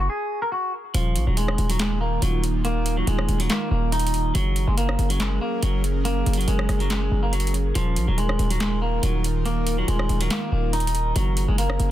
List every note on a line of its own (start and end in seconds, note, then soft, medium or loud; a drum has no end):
0.10 0.40 G#4 medium
0.42 0.51 A#4 medium
0.52 0.72 F#4 medium
0.94 1.17 D#1 loud
0.94 4.32 D#3 medium
0.94 1.25 F3 loud
0.94 4.32 A#3 medium
0.94 4.32 D#4 medium
0.94 4.32 F4 medium
0.94 closed hi-hat medium
1.16 1.26 A#1 loud
1.16 closed hi-hat medium
1.27 1.57 D#1 loud
1.27 1.36 F#3 medium
1.37 1.68 G#3 medium
1.37 closed hi-hat medium
1.48 cross-stick medium
1.58 2.20 D#1 loud
1.58 closed hi-hat soft
1.70 1.79 F#3 medium
1.70 closed hi-hat medium
1.79 1.99 G#3 medium
1.79 snare loud
1.79 clap loud
1.79 closed hi-hat medium
2.01 2.21 A#3 medium
2.22 3.04 D#1 loud
2.22 2.42 F#3 medium
2.22 closed hi-hat medium
2.44 closed hi-hat medium
2.65 2.95 A#3 loud
2.65 closed hi-hat medium
2.86 closed hi-hat medium
2.97 3.07 F#3 medium
3.07 3.28 D#1 loud
3.07 3.38 G#3 medium
3.07 closed hi-hat medium
3.19 cross-stick medium
3.29 3.49 D#1 loud
3.29 closed hi-hat soft
3.40 3.49 F#3 medium
3.40 closed hi-hat medium
3.50 3.70 A#3 medium
3.50 snare loud
3.50 clap loud
3.50 closed hi-hat medium
3.71 4.32 D#1 loud
3.71 3.91 A#3 medium
3.92 4.32 D#4 medium
3.92 closed hi-hat medium
3.99 closed hi-hat medium
4.07 closed hi-hat medium
4.14 closed hi-hat medium
4.35 4.66 F#1 loud
4.35 4.65 F#3 loud
4.35 7.72 F#3 medium
4.35 7.72 C#4 medium
4.35 7.72 G#4 medium
4.35 7.72 A#4 medium
4.35 closed hi-hat medium
4.56 closed hi-hat medium
4.67 4.98 F#1 loud
4.67 4.77 G#3 medium
4.77 5.08 A#3 medium
4.77 closed hi-hat medium
4.89 cross-stick medium
4.99 5.40 F#1 loud
4.99 closed hi-hat soft
5.10 5.19 F#3 medium
5.10 closed hi-hat medium
5.20 5.40 G#3 medium
5.20 snare loud
5.20 clap loud
5.20 closed hi-hat medium
5.41 5.61 A#3 medium
5.63 6.24 F#1 loud
5.63 5.82 F#3 medium
5.63 closed hi-hat medium
5.84 closed hi-hat medium
6.05 6.36 A#3 medium
6.05 closed hi-hat medium
6.26 6.47 F#1 loud
6.26 closed hi-hat medium
6.33 closed hi-hat medium
6.38 6.47 F#3 medium
6.38 closed hi-hat medium
6.48 6.68 F#1 loud
6.48 6.78 G#3 medium
6.48 closed hi-hat medium
6.59 cross-stick medium
6.69 7.10 F#1 loud
6.69 cross-stick medium
6.69 closed hi-hat medium
6.80 6.90 F#3 medium
6.80 closed hi-hat soft
6.90 7.21 G#3 medium
6.90 snare loud
6.90 clap loud
6.90 closed hi-hat medium
7.12 7.73 F#1 loud
7.23 7.32 A#3 medium
7.33 7.52 F#3 medium
7.33 closed hi-hat medium
7.40 closed hi-hat medium
7.47 closed hi-hat medium
7.54 closed hi-hat medium
7.75 7.98 D#1 loud
7.75 11.12 D#3 medium
7.75 8.06 F3 loud
7.75 11.12 D#4 medium
7.75 11.12 F4 medium
7.75 11.12 A#4 medium
7.75 closed hi-hat medium
7.96 8.07 A#1 loud
7.96 closed hi-hat medium
8.08 8.38 D#1 loud
8.08 8.17 F#3 medium
8.18 8.48 G#3 medium
8.18 closed hi-hat medium
8.29 cross-stick medium
8.39 9.00 D#1 loud
8.39 closed hi-hat soft
8.50 8.60 F#3 medium
8.50 closed hi-hat medium
8.60 8.80 G#3 medium
8.60 snare loud
8.60 clap loud
8.60 closed hi-hat medium
8.82 9.01 A#3 medium
9.03 9.85 D#1 loud
9.03 9.23 F#3 medium
9.03 closed hi-hat medium
9.24 closed hi-hat medium
9.46 9.76 A#3 loud
9.46 closed hi-hat medium
9.67 closed hi-hat medium
9.78 9.87 F#3 medium
9.88 10.09 D#1 loud
9.88 10.19 G#3 medium
9.88 closed hi-hat medium
9.99 cross-stick medium
10.09 10.30 D#1 loud
10.09 closed hi-hat soft
10.21 10.30 F#3 medium
10.21 closed hi-hat medium
10.30 10.50 A#3 medium
10.30 snare loud
10.30 clap medium
10.30 closed hi-hat medium
10.52 11.13 D#1 loud
10.52 10.72 A#3 medium
10.73 11.13 D#4 medium
10.73 closed hi-hat medium
10.80 closed hi-hat medium
10.87 closed hi-hat medium
10.95 closed hi-hat medium
11.16 11.47 F#1 loud
11.16 11.46 F#3 loud
11.16 11.91 F#3 medium
11.16 11.91 C#4 medium
11.16 11.91 G#4 medium
11.16 11.91 A#4 medium
11.16 closed hi-hat medium
11.37 closed hi-hat medium
11.48 11.78 F#1 loud
11.48 11.58 G#3 medium
11.58 11.89 A#3 medium
11.58 closed hi-hat medium
11.70 cross-stick medium
11.80 11.91 F#1 loud
11.80 closed hi-hat soft